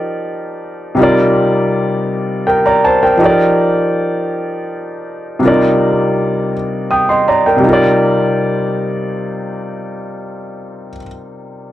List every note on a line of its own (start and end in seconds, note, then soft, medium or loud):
0.00 0.92 F3 medium
0.00 0.93 D#4 medium
0.00 0.94 G4 medium
0.00 0.95 A#4 medium
0.00 0.96 D5 medium
0.95 3.14 C3 medium
0.95 3.15 G3 medium
0.95 3.16 D#4 medium
0.99 3.16 F4 medium
0.99 2.44 A#4 medium
0.99 2.45 D5 medium
2.47 2.64 A#4 soft
2.47 2.64 G5 medium
2.66 2.83 D5 soft
2.66 2.82 A#5 medium
2.85 3.01 C5 soft
2.85 3.01 A5 medium
3.03 3.28 A#4 soft
3.03 3.37 G5 medium
3.17 5.36 F3 medium
3.17 5.37 D#4 medium
3.17 5.38 G4 medium
3.23 3.28 A4 soft
3.23 5.40 D5 medium
3.30 5.43 A#4 medium
5.39 7.55 C3 medium
5.39 7.58 G3 soft
5.39 5.48 D4 soft
5.44 7.61 F4 soft
5.44 6.52 A#4 soft
5.44 6.53 D5 medium
5.49 7.61 D#4 medium
6.91 7.08 G5 soft
6.91 7.08 D#6 soft
7.09 7.27 D#5 soft
7.09 7.26 C6 soft
7.28 7.45 D5 soft
7.28 7.45 A#5 medium
7.46 7.68 A#4 soft
7.46 7.81 G5 soft
7.57 10.89 C3 medium
7.57 10.92 G3 medium
7.63 10.96 D#4 medium
7.63 10.99 F4 medium
7.70 11.02 A#4 medium
7.70 11.06 D5 medium